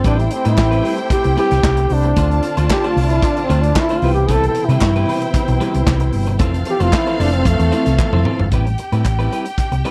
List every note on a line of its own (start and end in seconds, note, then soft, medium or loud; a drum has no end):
0.04 0.27 A1 loud
0.04 0.23 G3 medium
0.04 2.15 A3 medium
0.04 0.18 C4 medium
0.04 3.98 C4 medium
0.04 0.23 D4 loud
0.04 2.12 E4 medium
0.04 0.17 E4 medium
0.04 2.15 G4 medium
0.04 0.17 B4 loud
0.04 2.12 C5 medium
0.04 2.12 G5 loud
0.04 kick loud
0.04 closed hi-hat medium
0.18 0.35 E4 medium
0.18 muted clean electric guitar stroke medium
0.18 closed hi-hat soft
0.31 0.47 C4 medium
0.31 muted clean electric guitar stroke soft
0.31 closed hi-hat medium
0.45 0.56 A2 medium
0.45 0.56 G3 medium
0.45 0.56 C4 medium
0.45 0.56 E4 medium
0.45 0.96 E4 loud
0.45 0.57 B4 medium
0.45 closed hi-hat medium
0.57 0.80 A1 medium
0.57 muted clean electric guitar stroke soft
0.57 kick loud
0.57 snare loud
0.57 clap loud
0.57 clap medium
0.71 0.82 G3 medium
0.71 0.83 C4 medium
0.71 0.84 E4 medium
0.71 0.84 B4 medium
0.71 closed hi-hat soft
0.84 0.98 G3 medium
0.84 0.97 C4 medium
0.84 0.97 E4 medium
0.84 0.96 B4 medium
0.84 open hi-hat medium
0.98 muted clean electric guitar stroke soft
0.98 closed hi-hat soft
1.10 1.36 G4 loud
1.10 kick loud
1.10 clap medium
1.10 closed hi-hat medium
1.24 1.35 C2 medium
1.24 muted clean electric guitar stroke medium
1.24 closed hi-hat soft
1.37 1.55 G3 medium
1.37 1.51 C4 medium
1.37 1.50 E4 medium
1.37 1.95 G4 loud
1.37 1.50 B4 loud
1.37 closed hi-hat medium
1.51 1.62 C2 loud
1.51 muted clean electric guitar stroke soft
1.51 snare soft
1.51 closed hi-hat medium
1.63 1.85 C2 medium
1.63 muted clean electric guitar stroke soft
1.63 kick loud
1.63 snare loud
1.63 clap loud
1.63 clap medium
1.77 muted clean electric guitar stroke soft
1.77 closed hi-hat medium
1.90 2.12 C2 medium
1.90 2.45 D4 loud
1.90 open hi-hat medium
2.03 muted clean electric guitar stroke soft
2.03 closed hi-hat soft
2.16 2.39 D2 loud
2.16 4.00 D3 medium
2.16 2.34 A3 medium
2.16 2.30 D4 medium
2.16 3.98 F4 loud
2.16 4.00 F4 medium
2.16 2.30 F4 medium
2.16 2.29 C5 medium
2.16 3.98 D5 loud
2.16 3.98 A5 loud
2.16 kick loud
2.16 closed hi-hat medium
2.30 muted clean electric guitar stroke medium
2.30 closed hi-hat soft
2.43 muted clean electric guitar stroke soft
2.43 closed hi-hat medium
2.57 2.68 D2 medium
2.57 2.69 A3 medium
2.57 2.69 D4 medium
2.57 2.69 F4 medium
2.57 2.70 C5 medium
2.57 closed hi-hat medium
2.70 2.87 G4 loud
2.70 muted clean electric guitar stroke soft
2.70 kick loud
2.70 snare loud
2.70 clap loud
2.70 clap medium
2.84 2.96 A3 medium
2.84 2.96 D4 medium
2.84 2.97 F4 medium
2.84 2.97 C5 medium
2.84 closed hi-hat soft
2.89 3.09 F4 medium
2.96 3.18 C2 loud
2.96 3.11 A3 medium
2.96 3.11 D4 medium
2.96 3.11 F4 medium
2.96 3.10 C5 medium
2.96 open hi-hat medium
3.07 3.27 E4 medium
3.07 closed hi-hat medium
3.11 muted clean electric guitar stroke soft
3.22 3.42 D4 medium
3.22 kick loud
3.22 clap medium
3.22 closed hi-hat medium
3.37 muted clean electric guitar stroke soft
3.37 closed hi-hat soft
3.44 3.63 C4 medium
3.50 3.71 D2 medium
3.50 3.67 A3 medium
3.50 3.63 D4 loud
3.50 3.63 F4 loud
3.50 3.62 C5 medium
3.50 closed hi-hat medium
3.62 3.81 D4 medium
3.62 muted clean electric guitar stroke soft
3.62 closed hi-hat soft
3.76 3.99 E4 loud
3.76 muted clean electric guitar stroke soft
3.76 kick loud
3.76 snare loud
3.76 clap loud
3.76 clap medium
3.89 4.03 A3 medium
3.89 4.03 D4 medium
3.89 4.04 F4 medium
3.89 4.04 C5 medium
3.89 closed hi-hat soft
3.98 4.13 F4 loud
3.98 open hi-hat medium
4.02 4.46 C2 loud
4.02 6.38 B2 medium
4.02 6.38 C3 medium
4.02 8.48 E3 medium
4.02 4.17 G3 medium
4.02 4.17 C4 medium
4.02 6.36 E4 medium
4.02 4.17 E4 medium
4.02 4.16 B4 medium
4.02 6.37 C5 medium
4.02 6.37 G5 medium
4.14 4.28 G4 loud
4.14 muted clean electric guitar stroke soft
4.14 closed hi-hat soft
4.27 4.47 G3 medium
4.27 4.43 C4 medium
4.27 4.43 E4 medium
4.27 4.33 G#4 medium
4.27 4.42 B4 loud
4.27 kick loud
4.27 closed hi-hat medium
4.31 4.47 A4 loud
4.43 muted clean electric guitar stroke medium
4.43 closed hi-hat soft
4.48 4.67 A4 loud
4.55 muted clean electric guitar stroke soft
4.55 closed hi-hat medium
4.65 4.79 C3 medium
4.65 5.44 E4 medium
4.69 4.81 G3 medium
4.69 4.81 C4 medium
4.69 4.81 E4 medium
4.69 4.82 B4 medium
4.69 closed hi-hat soft
4.81 5.03 G2 medium
4.81 muted clean electric guitar stroke soft
4.81 kick loud
4.81 snare loud
4.81 clap loud
4.81 clap medium
4.96 5.07 G3 medium
4.96 5.07 C4 medium
4.96 5.08 E4 medium
4.96 5.08 B4 medium
4.96 closed hi-hat soft
5.08 5.22 G3 medium
5.08 5.22 C4 medium
5.08 5.22 E4 medium
5.08 5.21 B4 medium
5.08 open hi-hat medium
5.22 muted clean electric guitar stroke soft
5.22 closed hi-hat medium
5.34 kick loud
5.34 clap medium
5.34 closed hi-hat medium
5.48 5.59 B1 medium
5.48 muted clean electric guitar stroke medium
5.48 closed hi-hat soft
5.61 5.78 G3 loud
5.61 5.74 C4 loud
5.61 5.74 E4 loud
5.61 5.73 B4 loud
5.61 closed hi-hat medium
5.74 5.85 C2 medium
5.74 muted clean electric guitar stroke medium
5.74 closed hi-hat soft
5.87 6.09 C2 medium
5.87 muted clean electric guitar stroke soft
5.87 kick loud
5.87 snare loud
5.87 clap medium
5.87 clap loud
6.00 muted clean electric guitar stroke soft
6.00 closed hi-hat medium
6.13 6.39 G1 medium
6.13 open hi-hat medium
6.26 muted clean electric guitar stroke soft
6.26 closed hi-hat soft
6.39 6.62 F1 loud
6.39 8.50 F3 medium
6.39 6.58 C4 medium
6.39 8.48 C4 loud
6.39 6.54 E4 medium
6.39 8.50 A4 medium
6.39 6.53 A4 medium
6.39 8.48 A4 medium
6.39 6.53 C5 medium
6.39 8.48 F5 loud
6.39 kick loud
6.39 closed hi-hat medium
6.54 muted clean electric guitar stroke medium
6.54 closed hi-hat soft
6.65 muted clean electric guitar stroke soft
6.65 closed hi-hat medium
6.70 6.84 G4 loud
6.80 6.91 F1 loud
6.80 6.92 C4 medium
6.80 6.92 E4 medium
6.80 6.97 F4 loud
6.80 6.92 A4 medium
6.80 6.93 C5 medium
6.80 closed hi-hat soft
6.93 7.23 E4 loud
6.93 muted clean electric guitar stroke soft
6.93 kick loud
6.93 snare loud
6.93 clap medium
7.07 7.18 C4 medium
7.07 7.19 E4 medium
7.07 7.19 A4 medium
7.07 7.20 C5 medium
7.07 closed hi-hat soft
7.19 7.42 F1 loud
7.19 7.34 C4 medium
7.19 7.37 D4 loud
7.19 7.34 E4 medium
7.19 7.33 A4 medium
7.19 7.33 C5 medium
7.19 open hi-hat medium
7.33 7.47 C4 medium
7.33 muted clean electric guitar stroke soft
7.33 closed hi-hat medium
7.45 7.57 F2 loud
7.45 8.22 A3 medium
7.45 kick loud
7.45 clap medium
7.45 closed hi-hat loud
7.60 7.70 E2 medium
7.60 muted clean electric guitar stroke medium
7.60 closed hi-hat medium
7.72 7.90 C4 loud
7.72 7.86 E4 loud
7.72 7.86 A4 loud
7.72 7.85 C5 loud
7.72 closed hi-hat medium
7.86 7.97 C2 medium
7.86 muted clean electric guitar stroke soft
7.86 snare soft
7.86 closed hi-hat soft
7.99 muted clean electric guitar stroke medium
7.99 kick loud
7.99 clap loud
7.99 high tom medium
8.13 8.23 F2 loud
8.13 8.24 C4 medium
8.13 8.25 E4 medium
8.13 8.26 A4 medium
8.13 8.26 C5 medium
8.13 mid tom medium
8.25 8.40 C4 medium
8.25 8.40 E4 medium
8.25 8.40 A4 medium
8.25 8.39 C5 medium
8.25 mid tom medium
8.39 8.50 G1 loud
8.39 muted clean electric guitar stroke soft
8.39 floor tom medium
8.52 8.74 A1 medium
8.52 8.70 G3 medium
8.52 8.66 C4 medium
8.52 8.66 E4 medium
8.52 9.91 G4 medium
8.52 8.65 B4 medium
8.52 9.91 G5 medium
8.52 kick medium
8.52 closed hi-hat medium
8.67 muted clean electric guitar stroke soft
8.67 closed hi-hat soft
8.78 muted clean electric guitar stroke soft
8.78 closed hi-hat medium
8.92 9.03 A2 medium
8.92 9.04 G3 soft
8.92 9.04 C4 medium
8.92 9.05 E4 medium
8.92 9.05 B4 medium
8.92 closed hi-hat soft
9.05 9.27 A1 medium
9.05 muted clean electric guitar stroke soft
9.05 kick medium
9.05 clap medium
9.05 closed hi-hat medium
9.19 9.30 G3 soft
9.19 9.31 C4 medium
9.19 9.32 E4 medium
9.19 9.32 B4 medium
9.19 closed hi-hat soft
9.32 9.46 G3 medium
9.32 9.45 C4 medium
9.32 9.45 E4 medium
9.32 9.44 B4 medium
9.32 closed hi-hat medium
9.46 muted clean electric guitar stroke soft
9.46 closed hi-hat soft
9.58 kick loud
9.58 clap medium
9.58 closed hi-hat medium
9.72 9.82 C2 medium
9.72 muted clean electric guitar stroke soft
9.72 closed hi-hat soft
9.85 9.91 G3 medium
9.85 9.91 C4 medium
9.85 9.91 E4 medium
9.85 9.91 B4 medium
9.85 closed hi-hat soft